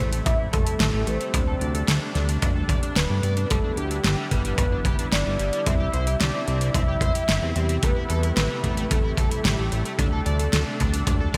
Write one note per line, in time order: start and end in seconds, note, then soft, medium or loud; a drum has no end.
0.00 0.21 A1 medium
0.00 3.46 C3 medium
0.00 7.79 G3 medium
0.00 3.46 A3 medium
0.00 1.30 E4 medium
0.00 0.22 C5 loud
0.12 0.19 A3 loud
0.12 closed hi-hat medium
0.26 0.49 A1 medium
0.26 0.33 A3 medium
0.26 0.38 E5 loud
0.26 kick loud
0.26 closed hi-hat medium
0.39 0.46 E4 medium
0.53 0.65 A1 loud
0.53 0.63 A4 loud
0.53 1.09 A4 loud
0.53 kick loud
0.53 closed hi-hat medium
0.66 0.73 E4 medium
0.66 closed hi-hat medium
0.80 0.91 A1 medium
0.80 0.90 E4 loud
0.80 snare loud
0.80 closed hi-hat medium
0.93 1.05 A1 medium
0.93 1.00 A3 loud
1.07 1.18 A1 medium
1.07 1.17 A3 medium
1.07 2.15 C5 loud
1.07 closed hi-hat medium
1.21 1.27 A3 loud
1.21 closed hi-hat medium
1.34 1.56 D2 medium
1.34 1.41 D4 medium
1.34 3.48 D4 medium
1.34 kick loud
1.34 closed hi-hat medium
1.48 1.54 A4 medium
1.61 1.84 D2 medium
1.61 1.71 D5 loud
1.61 closed hi-hat medium
1.74 1.81 A4 medium
1.74 closed hi-hat medium
1.88 1.99 D2 medium
1.88 1.98 A4 loud
1.88 snare loud
1.88 closed hi-hat medium
2.01 2.08 D4 loud
2.15 2.38 D2 loud
2.15 2.25 D4 medium
2.15 snare soft
2.15 closed hi-hat medium
2.29 2.35 D4 loud
2.29 closed hi-hat medium
2.42 2.65 D2 medium
2.42 2.49 D4 medium
2.42 kick loud
2.42 closed hi-hat medium
2.56 2.62 A4 medium
2.69 2.80 D2 medium
2.69 2.79 D5 medium
2.69 kick loud
2.69 closed hi-hat medium
2.83 2.93 D4 loud
2.83 closed hi-hat medium
2.96 3.07 D1 medium
2.96 3.00 D4 loud
2.96 3.52 B4 loud
2.96 snare loud
2.96 closed hi-hat medium
3.10 3.21 G2 medium
3.10 3.16 D4 medium
3.23 3.46 G2 medium
3.23 3.33 D5 loud
3.23 closed hi-hat medium
3.37 3.47 D4 medium
3.37 closed hi-hat medium
3.50 3.62 G1 medium
3.50 5.64 D3 medium
3.50 3.57 G3 medium
3.50 5.64 B3 medium
3.50 9.95 E4 medium
3.50 3.79 A4 loud
3.50 kick loud
3.50 closed hi-hat medium
3.64 3.71 D4 medium
3.77 4.00 D2 medium
3.77 3.87 G4 medium
3.77 4.31 G4 loud
3.77 closed hi-hat medium
3.91 3.98 D4 medium
3.91 closed hi-hat medium
4.04 4.16 G1 medium
4.04 4.14 D4 loud
4.04 snare loud
4.04 closed hi-hat medium
4.18 4.25 G3 loud
4.31 4.54 G1 medium
4.31 4.41 G3 medium
4.31 5.14 B4 loud
4.31 kick medium
4.31 closed hi-hat medium
4.45 4.52 G3 loud
4.45 closed hi-hat medium
4.58 4.81 G1 medium
4.58 4.65 G3 medium
4.58 kick loud
4.58 closed hi-hat medium
4.72 4.79 D4 medium
4.85 4.96 G1 loud
4.85 4.96 G4 loud
4.85 kick loud
4.85 closed hi-hat medium
4.99 5.06 D4 medium
4.99 closed hi-hat medium
5.12 5.24 G1 medium
5.12 5.23 D4 loud
5.12 5.68 D5 loud
5.12 snare loud
5.12 closed hi-hat medium
5.26 5.37 G1 medium
5.26 5.33 G3 loud
5.39 5.51 G1 medium
5.39 5.50 G3 medium
5.39 closed hi-hat medium
5.53 5.60 G3 loud
5.53 closed hi-hat medium
5.66 5.89 C2 medium
5.66 11.37 C3 medium
5.66 5.73 C4 medium
5.66 6.20 E5 loud
5.66 kick loud
5.66 closed hi-hat medium
5.80 5.87 G4 medium
5.93 6.16 C2 medium
5.93 6.04 C5 loud
5.93 closed hi-hat medium
6.07 6.14 G4 medium
6.07 closed hi-hat medium
6.20 6.32 C2 medium
6.20 6.31 G4 loud
6.20 6.76 D5 loud
6.20 snare loud
6.20 closed hi-hat medium
6.34 6.41 C4 loud
6.48 6.70 C2 loud
6.48 6.58 C4 medium
6.48 closed hi-hat medium
6.61 6.68 C4 loud
6.61 closed hi-hat medium
6.74 6.97 C2 medium
6.74 6.81 C4 medium
6.74 7.57 E5 loud
6.74 kick loud
6.74 closed hi-hat medium
6.88 6.95 G4 medium
7.01 7.13 C2 medium
7.01 7.12 C5 loud
7.01 kick loud
7.01 closed hi-hat medium
7.15 7.22 G4 medium
7.15 closed hi-hat medium
7.29 7.40 G1 medium
7.29 7.39 G4 loud
7.29 snare loud
7.29 closed hi-hat medium
7.42 7.53 E2 medium
7.42 7.49 C4 loud
7.56 7.78 E2 medium
7.56 7.66 C4 medium
7.56 7.84 G4 loud
7.56 closed hi-hat medium
7.69 7.76 C4 loud
7.69 closed hi-hat medium
7.83 7.94 A1 loud
7.83 11.37 G3 medium
7.83 11.37 A3 medium
7.83 7.90 A3 medium
7.83 8.36 B4 loud
7.83 kick loud
7.83 closed hi-hat medium
7.96 8.03 E4 medium
8.10 8.32 E2 medium
8.10 8.20 A4 loud
8.10 closed hi-hat medium
8.23 8.30 E4 medium
8.23 closed hi-hat medium
8.37 8.48 A1 medium
8.37 8.47 E4 loud
8.37 8.87 B4 loud
8.37 snare loud
8.37 closed hi-hat medium
8.50 8.57 A3 loud
8.64 8.86 A1 medium
8.64 8.74 A3 medium
8.64 kick medium
8.64 closed hi-hat medium
8.77 8.84 A3 loud
8.77 closed hi-hat medium
8.91 9.13 A1 medium
8.91 8.98 A3 medium
8.91 9.46 A4 loud
8.91 kick loud
8.91 closed hi-hat medium
9.04 9.11 E4 medium
9.17 9.29 A1 loud
9.17 9.28 A4 loud
9.17 kick loud
9.17 closed hi-hat medium
9.31 9.38 E4 medium
9.31 closed hi-hat medium
9.45 9.56 A1 medium
9.45 9.55 E4 medium
9.45 10.00 G4 medium
9.45 snare loud
9.45 closed hi-hat medium
9.58 9.70 A1 medium
9.58 9.65 A3 loud
9.72 9.83 A1 medium
9.72 9.82 A3 medium
9.72 closed hi-hat medium
9.85 9.92 A3 loud
9.85 closed hi-hat medium
9.99 10.21 D2 medium
9.99 10.06 D4 medium
9.99 11.37 D4 medium
9.99 11.37 A4 loud
9.99 kick loud
9.99 closed hi-hat medium
10.13 10.19 A4 medium
10.26 10.49 D2 medium
10.26 10.36 D5 loud
10.26 closed hi-hat medium
10.39 10.46 A4 medium
10.39 closed hi-hat medium
10.53 10.64 D2 medium
10.53 10.63 A4 loud
10.53 snare loud
10.53 closed hi-hat medium
10.66 10.73 D4 loud
10.80 11.03 D2 loud
10.80 10.90 D4 medium
10.80 kick medium
10.80 closed hi-hat medium
10.94 11.00 D4 loud
10.94 closed hi-hat medium
11.07 11.30 D2 medium
11.07 11.14 D4 medium
11.07 kick loud
11.07 closed hi-hat medium
11.20 11.27 A4 medium
11.34 11.37 D5 loud
11.34 kick loud
11.34 closed hi-hat medium